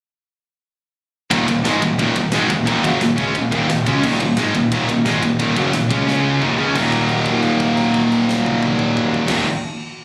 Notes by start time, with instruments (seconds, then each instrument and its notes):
1.31 picked electric bass D#1, distorted electric guitar D#2 A#2 D#3, analog synth pad D#3 A#3 F4 F#4, kick, ride
1.48 picked electric bass D#1, distorted electric guitar D#2 A#2, kick, ride
1.64 picked electric bass G#1, distorted electric guitar G#2 D#3 G#3, snare, ride
1.82 picked electric bass D#1, distorted electric guitar D#2 A#2, kick, ride
1.99 picked electric bass D#1, distorted electric guitar D#2 A#2 D#3, kick, ride
2.16 picked electric bass D#1, distorted electric guitar D#2 A#2, kick, ride
2.32 picked electric bass G#1, distorted electric guitar G#2 D#3 G#3, snare, ride
2.50 picked electric bass D#1, distorted electric guitar D#2 A#2, kick, ride
2.67 picked electric bass D#1, distorted electric guitar D#2 A#2 D#3, kick, ride
2.84 picked electric bass F#1, distorted electric guitar F#2 C#3 F#3, kick, ride
3.01 picked electric bass D#1, distorted electric guitar D#2 A#2, snare, ride
3.18 picked electric bass C#2, distorted electric guitar C#3 G#3 C#4, kick, ride
3.34 picked electric bass D#1, distorted electric guitar D#2 A#2, kick, ride
3.52 picked electric bass D#1, distorted electric guitar D#2 A#2 D#3, kick, ride
3.70 picked electric bass D#1, distorted electric guitar D#2 A#2, snare, ride
3.86 picked electric bass C#2, distorted electric guitar C#3 G#3 C#4, kick, ride
4.03 picked electric bass D#1, distorted electric guitar D#2 A#2 D#3, kick, crash
4.20 picked electric bass D#1, distorted electric guitar D#2 A#2, kick, ride
4.37 picked electric bass G#1, distorted electric guitar G#2 D#3 G#3, snare, ride
4.55 picked electric bass D#1, distorted electric guitar D#2 A#2, kick, ride
4.72 picked electric bass D#1, distorted electric guitar D#2 A#2 D#3, kick, ride
4.89 picked electric bass D#1, distorted electric guitar D#2 A#2, kick, ride
5.06 picked electric bass G#1, distorted electric guitar G#2 D#3 G#3, snare, ride
5.23 picked electric bass D#1, distorted electric guitar D#2 A#2, kick, ride
5.39 picked electric bass D#1, distorted electric guitar D#2 A#2 D#3, kick, ride
5.56 picked electric bass F#1, distorted electric guitar F#2 C#3 F#3, kick, ride
5.73 picked electric bass D#1, distorted electric guitar D#2 A#2, snare, ride
5.91 picked electric bass C#2, distorted electric guitar C#3 G#3 C#4, kick, ride
6.06 picked electric bass C#2, analog synth pad C#3 G#3 D#4 C#5, distorted electric guitar C#3 G#3 C#4, snare
6.41 picked electric bass D#1, distorted electric guitar D#2 A#2 D#3, analog synth pad D#3 A#3 F4 F#4, mid tom
6.58 picked electric bass C#2, distorted electric guitar C#3 G#3 C#4, floor tom
6.74 picked electric bass D#1, distorted electric guitar D#2 A#2 D#3 F#3 A#3, analog synth pad D#3 A#3 F4 F#4, kick, crash
6.78 distorted electric guitar D#4
6.92 kick, crash
7.09 crash
7.25 kick, crash
7.43 crash
7.60 kick, crash
7.77 crash
7.94 kick, crash
8.12 crash
8.29 snare
8.46 high tom
8.63 high tom
8.79 mid tom
8.97 mid tom
9.14 floor tom
9.27 picked electric bass D#1, distorted electric guitar D#2 A#2 D#3, analog synth pad D#3 A#3 F4 F#4, kick, snare, crash
9.32 distorted electric guitar F#3 A#3 D#4